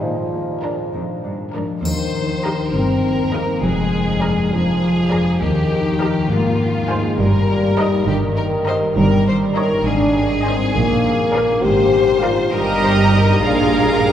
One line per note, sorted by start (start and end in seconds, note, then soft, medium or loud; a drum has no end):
0.01 1.87 A#2 soft
0.01 0.76 A#2 soft
0.01 0.92 F3 soft
0.33 3.04 A#3 soft
0.63 0.86 D4 soft
0.63 1.23 D4 soft
0.63 0.86 A#4 soft
0.94 1.02 F2 soft
0.94 3.33 A#4 soft
1.24 1.33 G2 soft
1.24 1.87 D4 soft
1.54 1.63 G#2 soft
1.54 1.87 F3 soft
1.54 1.77 D4 soft
1.54 1.77 A#4 soft
1.84 2.57 D#2 soft
1.84 2.77 D#3 soft
1.84 2.71 D#3 medium
1.84 2.70 C5 soft
1.84 triangle soft
2.15 2.44 D#4 soft
2.44 3.33 D#4 soft
2.44 2.67 G4 soft
2.44 3.66 G4 soft
2.44 2.67 A#4 soft
2.44 2.67 D#5 soft
2.44 2.67 A#5 soft
2.73 3.46 G1 soft
2.73 3.66 G2 soft
2.73 3.46 G2 soft
2.73 3.32 C4 medium
2.73 3.63 A#4 soft
3.05 3.92 A#3 soft
3.33 3.63 A#3 medium
3.33 3.66 D#4 soft
3.33 3.56 G4 soft
3.33 3.56 A#4 soft
3.33 4.51 A#4 soft
3.33 3.56 D#5 soft
3.33 3.55 A#5 soft
3.63 4.35 F1 medium
3.63 4.35 F2 soft
3.63 5.44 F2 soft
3.63 4.50 G#3 medium
3.63 4.51 G#4 soft
3.93 6.33 A#3 soft
4.22 4.81 D4 soft
4.22 4.45 G#4 soft
4.22 4.45 A#4 soft
4.22 4.45 D5 soft
4.22 4.45 A#5 soft
4.51 5.24 F1 soft
4.51 5.24 F2 soft
4.51 5.41 F3 medium
4.51 5.40 G#4 medium
4.51 6.33 A#4 soft
4.82 5.44 D4 soft
5.11 5.44 F3 soft
5.11 5.33 G#4 soft
5.11 5.34 A#4 soft
5.11 5.33 D5 soft
5.11 5.33 A#5 soft
5.41 6.13 D#2 medium
5.41 6.14 D#2 medium
5.41 6.29 D#3 medium
5.41 6.33 D#3 soft
5.41 6.29 G4 medium
5.71 6.00 D#4 soft
6.01 6.33 D#4 soft
6.01 6.23 G4 soft
6.01 6.33 G4 soft
6.01 6.23 A#4 medium
6.01 6.23 D#5 soft
6.01 6.23 A#5 soft
6.30 7.02 G#1 medium
6.30 7.22 G#2 soft
6.30 7.03 G#2 medium
6.30 6.89 A#3 medium
6.30 7.20 F4 soft
6.60 7.22 C4 soft
6.89 7.19 G#3 medium
6.89 7.22 F4 soft
6.89 7.22 G#4 soft
6.89 7.12 C5 soft
6.89 7.12 F5 soft
6.89 7.12 G#5 soft
7.19 7.91 G1 medium
7.19 7.91 G2 medium
7.19 8.96 G2 soft
7.19 8.08 G3 medium
7.19 8.07 A#4 medium
7.50 9.88 A#3 soft
7.79 8.37 D#4 soft
7.79 8.01 A#4 medium
7.79 8.01 D#5 medium
7.79 8.01 A#5 soft
8.08 8.80 G1 medium
8.08 8.80 G2 medium
8.08 8.95 D#3 medium
8.08 8.17 G4 soft
8.08 9.56 A#4 soft
8.37 9.55 D#4 soft
8.37 8.45 A#4 medium
8.67 9.88 G3 soft
8.67 8.90 A#4 soft
8.67 8.76 C5 medium
8.67 8.89 D#5 medium
8.67 8.90 D#5 medium
8.67 8.89 A#5 soft
8.97 9.68 G1 medium
8.97 9.88 G2 soft
8.97 9.69 G2 medium
8.97 9.69 G3 medium
8.97 9.26 A#4 medium
9.27 9.88 C#4 soft
9.27 9.36 C5 medium
9.56 10.44 D#4 soft
9.56 9.88 A#4 soft
9.56 9.86 A#4 medium
9.56 9.78 C#5 medium
9.56 9.78 D#5 medium
9.56 9.78 A#5 medium
9.85 10.57 G#1 medium
9.85 10.77 G#2 medium
9.85 10.58 G#2 medium
9.85 10.44 D4 medium
9.85 11.64 G#4 medium
10.16 10.77 C4 soft
10.45 10.75 C4 medium
10.45 10.77 D#4 soft
10.45 10.77 G#4 soft
10.45 10.67 C5 medium
10.45 10.67 D#5 soft
10.45 10.67 G#5 soft
10.74 11.46 A#1 medium
10.74 11.66 A#2 soft
10.74 11.46 A#2 medium
10.74 11.61 A#3 medium
11.05 11.92 A#3 soft
11.34 12.21 D4 soft
11.34 12.22 F4 soft
11.34 11.56 A#4 medium
11.34 11.56 D5 medium
11.34 11.56 F5 medium
11.63 12.35 G#1 medium
11.63 12.55 G#2 soft
11.63 12.35 G#2 medium
11.63 12.23 G4 medium
11.63 12.51 C5 medium
11.93 12.81 A#3 soft
12.22 12.55 D4 soft
12.22 12.53 F4 medium
12.22 12.55 F4 soft
12.22 12.45 A#4 soft
12.22 12.45 D5 soft
12.22 12.45 F5 medium
12.52 13.39 G1 soft
12.52 13.45 G2 soft
12.52 13.39 G2 soft
12.52 13.41 G3 medium
12.52 13.39 G4 soft
12.52 13.39 A#4 soft
12.52 12.83 A#4 soft
12.52 13.39 D#5 soft
12.52 13.39 A#5 soft
12.82 13.71 A#3 soft
12.82 12.90 C5 medium
13.12 13.45 D#4 soft
13.12 13.45 G4 soft
13.12 13.42 A#4 medium
13.42 14.12 A#1 soft
13.42 14.12 A#2 soft
13.42 13.87 D4 medium
13.42 14.12 F4 soft
13.42 14.12 G#4 soft
13.42 14.12 A#4 soft
13.42 14.12 F5 soft
13.42 14.12 A#5 soft
13.72 14.12 A#3 soft
13.88 13.95 D#4 medium
14.02 14.12 F4 soft
14.02 14.09 G4 medium
14.02 14.12 G#4 soft